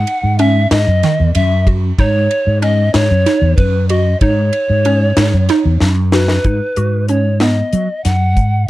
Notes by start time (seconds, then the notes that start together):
Already playing: D#4 F#5
0.07 ride
0.23 G#2
0.38 C#4 E5, ride
0.71 G#2 D#5, snare, ride
0.87 F#2
1.03 D#3, snare, ride
1.20 E2
1.35 F#2 E5, ride
1.67 F#4, kick, ride
1.98 G#2 D#4 C#5, kick, ride
2.31 ride
2.47 G#2
2.62 C#4 D#5, ride
2.94 G#2 C#5, snare, ride
3.11 F#2
3.26 D#4, snare, ride
3.41 E2
3.57 F#2 B4, kick, ride
3.89 F#4 D#5, ride
4.20 G#2 D#4 C#5, kick, ride
4.53 ride
4.69 G#2
4.85 C#4, ride
5.17 G#2, snare, ride
5.33 F#2
5.49 D#4, snare, ride
5.65 E2
5.80 F#2, snare
6.12 F#4 B4, snare
6.28 snare
6.44 G#2 D#4, kick, closed hi-hat
6.76 G#2 F#4, closed hi-hat
7.08 C#4 C#5, closed hi-hat
7.40 B3 D#5, snare, closed hi-hat
7.73 F#3, closed hi-hat
8.04 F#2 F#5, snare, closed hi-hat
8.37 G#2, kick, closed hi-hat